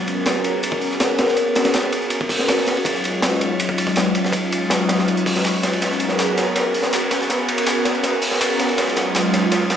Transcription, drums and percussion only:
0.07 closed hi-hat medium
0.07 ride medium
0.26 snare loud
0.26 closed hi-hat medium
0.26 ride medium
0.35 snare soft
0.44 closed hi-hat medium
0.44 ride medium
0.63 closed hi-hat medium
0.63 ride medium
0.72 kick medium
0.81 open hi-hat medium
0.91 snare soft
1.00 snare loud
1.00 closed hi-hat medium
1.00 ride medium
1.18 snare loud
1.18 closed hi-hat medium
1.18 ride medium
1.28 snare medium
1.28 snare soft
1.36 closed hi-hat medium
1.36 ride medium
1.55 snare loud
1.55 closed hi-hat medium
1.55 ride medium
1.65 snare loud
1.65 ride medium
1.74 snare loud
1.74 closed hi-hat medium
1.74 ride medium
1.83 snare soft
1.92 closed hi-hat medium
1.92 ride medium
2.02 closed hi-hat soft
2.10 closed hi-hat medium
2.10 ride medium
2.21 kick medium
2.29 kick medium
2.29 closed hi-hat medium
2.29 open hi-hat medium
2.39 snare medium
2.48 snare loud
2.48 closed hi-hat medium
2.48 ride medium
2.58 snare soft
2.67 snare medium
2.67 closed hi-hat medium
2.67 ride medium
2.77 ride soft
2.85 kick loud
2.85 closed hi-hat medium
2.85 ride medium
2.95 snare soft
3.04 closed hi-hat medium
3.04 ride medium
3.22 snare loud
3.22 closed hi-hat medium
3.22 ride medium
3.32 snare medium
3.41 closed hi-hat medium
3.41 ride medium
3.60 closed hi-hat medium
3.60 ride medium
3.69 kick loud
3.78 open hi-hat medium
3.78 ride medium
3.87 kick loud
3.87 snare soft
3.96 snare loud
3.96 closed hi-hat medium
3.96 ride medium
4.15 closed hi-hat medium
4.15 ride medium
4.25 snare medium
4.25 snare soft
4.33 kick loud
4.33 closed hi-hat medium
4.33 ride medium
4.52 closed hi-hat medium
4.52 ride medium
4.70 snare loud
4.70 closed hi-hat medium
4.70 ride medium
4.80 snare soft
4.89 snare medium
4.89 closed hi-hat medium
4.89 ride medium
4.98 snare soft
5.08 closed hi-hat medium
5.08 ride medium
5.17 closed hi-hat medium
5.26 kick medium
5.26 snare soft
5.26 open hi-hat medium
5.36 snare soft
5.36 closed hi-hat medium
5.44 snare loud
5.44 closed hi-hat medium
5.44 ride medium
5.54 snare soft
5.63 snare medium
5.63 closed hi-hat medium
5.63 ride medium
5.73 ride soft
5.82 snare soft
5.82 closed hi-hat medium
5.82 ride medium
5.91 snare soft
6.00 closed hi-hat medium
6.00 ride medium
6.09 snare soft
6.19 snare loud
6.19 closed hi-hat medium
6.19 ride medium
6.38 snare medium
6.38 closed hi-hat medium
6.38 ride medium
6.56 snare medium
6.56 closed hi-hat medium
6.56 ride medium
6.74 open hi-hat medium
6.83 snare soft
6.93 snare loud
6.93 closed hi-hat medium
6.93 ride medium
7.11 snare medium
7.11 closed hi-hat medium
7.11 ride medium
7.21 snare medium
7.30 snare medium
7.30 closed hi-hat medium
7.30 ride medium
7.48 closed hi-hat medium
7.48 ride medium
7.58 ride medium
7.66 snare loud
7.66 closed hi-hat medium
7.66 ride medium
7.85 snare medium
7.85 closed hi-hat medium
7.85 ride medium
7.95 closed hi-hat soft
8.03 snare medium
8.03 closed hi-hat medium
8.03 ride medium
8.22 closed hi-hat medium
8.22 open hi-hat medium
8.31 snare medium
8.41 snare loud
8.41 closed hi-hat medium
8.41 ride medium
8.50 snare soft
8.59 snare medium
8.59 closed hi-hat medium
8.59 ride medium
8.69 ride soft
8.78 snare medium
8.78 closed hi-hat medium
8.78 ride medium
8.87 snare soft
8.96 snare medium
8.96 closed hi-hat medium
8.96 ride medium
9.15 snare loud
9.15 snare medium
9.15 closed hi-hat medium
9.15 ride medium
9.33 snare medium
9.33 closed hi-hat medium
9.33 ride medium
9.52 snare medium
9.52 closed hi-hat medium
9.52 ride medium
9.70 snare medium
9.70 open hi-hat medium
9.70 ride medium

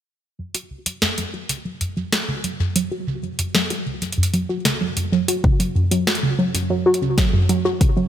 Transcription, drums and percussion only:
0.55 closed hi-hat soft
0.86 closed hi-hat medium
1.02 snare loud
1.18 closed hi-hat soft
1.49 closed hi-hat medium
1.81 closed hi-hat soft
2.13 snare loud
2.13 closed hi-hat medium
2.44 closed hi-hat soft
2.76 closed hi-hat medium
3.39 closed hi-hat medium
3.55 snare loud
3.70 closed hi-hat soft
4.02 closed hi-hat soft
4.12 closed hi-hat soft
4.23 closed hi-hat soft
4.34 closed hi-hat soft
4.65 snare loud
4.65 closed hi-hat medium
4.97 closed hi-hat soft
5.28 closed hi-hat medium
5.44 kick loud
5.60 closed hi-hat soft
5.91 closed hi-hat medium
6.07 snare loud
6.15 closed hi-hat soft
6.55 closed hi-hat medium
6.94 closed hi-hat soft
7.18 kick loud
7.18 snare loud
7.18 closed hi-hat medium
7.49 closed hi-hat soft
7.81 kick loud
7.81 closed hi-hat medium

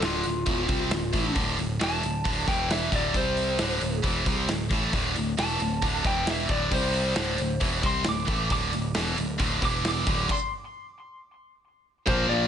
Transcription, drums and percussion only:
0.02 snare loud
0.02 open hi-hat medium
0.24 open hi-hat medium
0.46 kick loud
0.46 open hi-hat medium
0.69 kick loud
0.69 open hi-hat medium
0.91 snare loud
0.91 open hi-hat medium
1.13 kick loud
1.13 open hi-hat medium
1.36 kick loud
1.36 open hi-hat medium
1.59 open hi-hat medium
1.81 snare loud
1.81 open hi-hat medium
2.03 open hi-hat medium
2.25 kick loud
2.25 open hi-hat medium
2.48 kick loud
2.48 open hi-hat medium
2.71 snare loud
2.71 open hi-hat medium
2.92 kick loud
2.92 open hi-hat medium
3.14 kick loud
3.14 open hi-hat medium
3.37 open hi-hat medium
3.59 snare loud
3.59 open hi-hat medium
3.81 open hi-hat medium
4.04 kick loud
4.04 open hi-hat medium
4.26 kick loud
4.26 open hi-hat medium
4.49 snare loud
4.49 open hi-hat medium
4.71 kick loud
4.71 open hi-hat medium
4.93 kick loud
4.93 open hi-hat medium
5.16 open hi-hat medium
5.38 snare loud
5.38 open hi-hat medium
5.60 open hi-hat medium
5.82 kick loud
5.82 open hi-hat medium
6.05 kick loud
6.05 open hi-hat medium
6.27 snare loud
6.27 open hi-hat medium
6.49 kick loud
6.49 open hi-hat medium
6.72 kick medium
6.72 open hi-hat medium
6.94 open hi-hat medium
7.16 snare loud
7.16 open hi-hat medium
7.38 open hi-hat medium
7.61 kick loud
7.61 open hi-hat medium
7.83 kick loud
7.83 open hi-hat medium
8.04 snare loud
8.04 open hi-hat medium
8.28 kick loud
8.28 open hi-hat medium
8.50 kick loud
8.50 open hi-hat medium
8.73 open hi-hat medium
8.95 snare loud
8.95 open hi-hat medium
9.18 open hi-hat medium
9.39 kick loud
9.39 open hi-hat medium
9.62 kick loud
9.62 open hi-hat medium
9.85 snare loud
9.85 open hi-hat medium
10.07 kick loud
10.07 open hi-hat medium
10.29 kick loud
10.29 crash loud
12.07 kick loud
12.07 crash medium

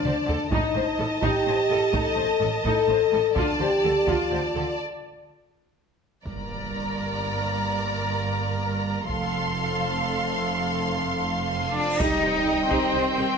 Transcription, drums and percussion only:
0.05 taiko mid medium
0.29 taiko low medium
0.52 taiko medium
1.22 taiko medium
1.94 taiko medium
2.65 taiko medium
3.36 taiko medium
4.08 taiko medium
6.26 taiko soft
9.09 taiko soft
12.00 taiko medium
12.71 taiko medium

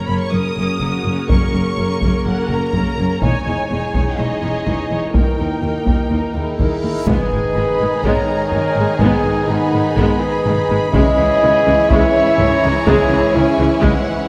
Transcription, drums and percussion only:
1.29 taiko medium
2.02 taiko medium
2.73 taiko medium
3.22 taiko medium
3.94 taiko medium
4.67 taiko medium
5.14 taiko medium
5.87 taiko medium
6.60 taiko medium
7.07 taiko medium
8.04 taiko medium
8.52 taiko low-mid soft
9.00 taiko medium
9.97 taiko medium
10.46 taiko low-mid medium
10.94 taiko medium
11.91 taiko medium
12.39 taiko low-mid medium
12.87 taiko loud
13.83 taiko medium

